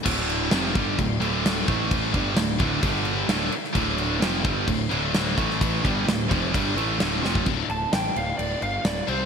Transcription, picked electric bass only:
\new Staff \with { instrumentName = "Picked electric bass" } { \clef bass \time 4/4 \key d \minor \tempo 4 = 130 d,,4 f,,8 g,,8 d,,8 d,,4 a,,8~ | a,,8 g,,8 d,,8 d,,8 g,,4 d,,8 r8 | d,,4 f,,8 g,,8 d,,8 d,,4 a,,8~ | a,,8 g,,8 d,,8 f,,8 g,,8 a,,8 d,,8 f,,8 |
d,,8 d,,8 a,,8 d,,8 d,,8 g,,8 d,,8 c,8 | }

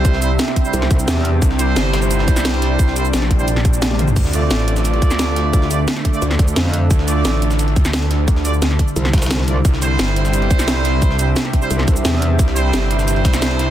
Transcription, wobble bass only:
\new Staff \with { instrumentName = "Wobble bass" } { \clef bass \time 4/4 \key c \mixolydian \tempo 4 = 175 r2 c,8 c,8 e,4 | r1 | r1 | r1 |
r2 d,8 d,8 f,4 | r1 | r2 c,2 | r1 |
r2 c,8 c,8 e,4 | r1 | }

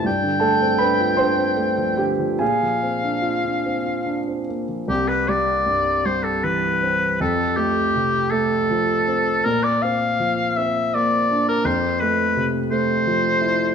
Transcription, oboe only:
\new Staff \with { instrumentName = "Oboe" } { \time 6/8 \key c \major \tempo 4. = 53 g''2~ g''8 r8 | f''2~ f''16 r8. | g'16 b'16 d''4 c''16 a'16 b'4 | a'8 g'4 a'4. |
bes'16 d''16 f''4 e''8 d''8. bes'16 | c''8 b'8. r16 c''4. | }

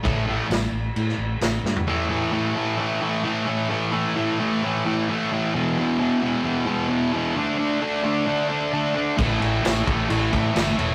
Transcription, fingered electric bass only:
\new Staff \with { instrumentName = "Fingered electric bass" } { \clef bass \time 4/4 \key e \phrygian \tempo 4 = 131 a,,4 a,,8 a,,8 a,8 a,,8 a,,8 g,8 | r1 | r1 | r1 |
r1 | a,,8 a,,8 a,,8 a,,8 a,,8 a,8 g,,8 e,,8 | }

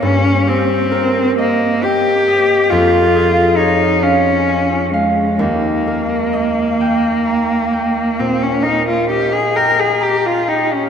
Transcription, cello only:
\new Staff \with { instrumentName = "Cello" } { \time 12/8 \key ees \mixolydian \tempo 4. = 44 des'8 c'4 bes8 g'4 f'4 ees'8 des'4 aes8 | bes2. c'16 des'16 ees'16 f'16 g'16 aes'16 bes'16 aes'16 g'16 f'16 ees'16 des'16 | }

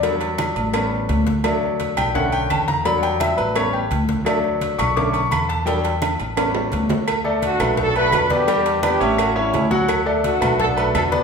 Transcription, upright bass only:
\new Staff \with { instrumentName = "Upright bass" } { \clef bass \time 4/4 \key d \major \tempo 4 = 170 e,4. a,,4. d,4~ | d,4. b,,4. e,4~ | e,4. a,,4. d,4~ | d,4. b,,4. e,4~ |
e,4. a,,4. d,4~ | d,4. b,,4. e,4~ | e,4. a,,4. d,4~ | d,4. b,,4. e,4 | }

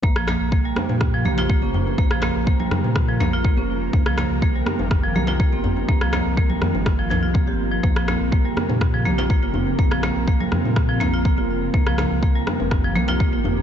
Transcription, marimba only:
\new Staff \with { instrumentName = "Marimba" } { \time 4/4 \key bes \dorian \tempo 4 = 123 bes16 f16 bes16 r16 bes16 g16 r8. f16 bes16 f'16 bes16 des'16 r8 | bes16 f16 bes16 r16 bes16 g16 r8. f16 bes16 f'16 bes16 des'16 r8 | bes16 f16 bes16 r16 bes16 g16 r8. f16 bes16 f'16 bes16 c'16 r8 | bes16 f16 bes16 r16 bes16 g16 r8. f16 f16 f'16 bes16 g'16 r16 f16 |
bes16 f16 bes16 r16 bes16 g16 r8. f16 bes16 f'16 bes16 f'16 r8 | bes16 f16 bes16 r16 bes16 g16 r8. f16 bes16 f'16 bes16 f'16 r8 | bes16 f16 bes16 r16 bes16 g16 r8. f16 bes16 f'16 bes16 f'16 r8 | }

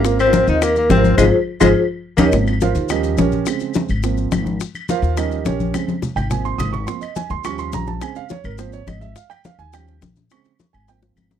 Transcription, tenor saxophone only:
\new Staff \with { instrumentName = "Tenor saxophone" } { \time 4/4 \key aes \major \tempo 4 = 210 bes8 c'4 ees'8 bes8 bes8 c'4 | aes8 r4 aes8 r4. bes8 | r1 | r1 |
r1 | r1 | r1 | r1 |
r1 | r1 | }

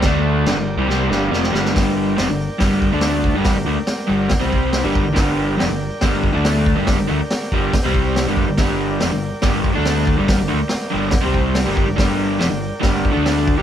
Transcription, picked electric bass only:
\new Staff \with { instrumentName = "Picked electric bass" } { \clef bass \time 4/4 \key g \minor \tempo 4 = 141 d,4 g,,16 g,,8 c,16 c,8 g,,8 f,,8 g,,8 | g,,4 f,,16 g,,8 r16 g,,8. d,4 g,,16~ | g,,16 g,,16 d,16 r8. g,,8 r16 c,4 g,,8 g,,16 | g,,4 f,,16 g,,8 r16 g,,8. d,4 g,,16~ |
g,,16 g,,16 d,16 r8. g,,8 r16 c,4 g,,8 g,,16 | g,,4 f,,16 g,,8 r16 g,,8. d,4 g,,16~ | g,,16 g,,16 d,16 r8. g,,8 r16 c,4 g,,8 g,,16 | g,,4 f,,16 g,,8 r16 g,,8. d,4 g,,16 | }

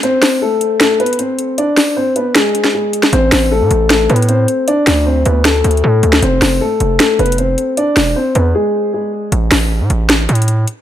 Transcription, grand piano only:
\new Staff \with { instrumentName = "Grand piano" } { \time 4/4 \key a \minor \tempo 4 = 155 <c' c''>4 <a a'>4 <a a'>8 <b b'>8 <c' c''>4 | <d' d''>4 <c' c''>8 <b b'>8 <gis gis'>4 <gis gis'>4 | <c' c''>4 <a a'>4 <a a'>8 <b b'>8 <c' c''>4 | <d' d''>4 <c' c''>8 <b b'>8 <a a'>4 <a a'>4 |
<c' c''>4 <a a'>4 <a a'>8 <b b'>8 <c' c''>4 | <d' d''>4 <c' c''>8 <b b'>8 <gis gis'>4 <gis gis'>4 | r1 | }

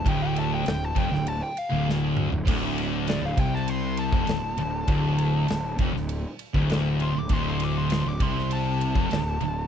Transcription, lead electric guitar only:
\new Staff \with { instrumentName = "Lead electric guitar" } { \time 4/4 \key d \minor \tempo 4 = 99 g''16 g''16 a''16 g''16 g''16 a''16 g''16 g''16 a''16 g''16 f''8 r4 | r4 d''16 f''16 g''16 a''16 c'''8 a''4.~ | a''4. r2 c'''16 d'''16 | c'''16 c'''16 d'''16 c'''16 c'''16 d'''16 c'''8 a''2 | }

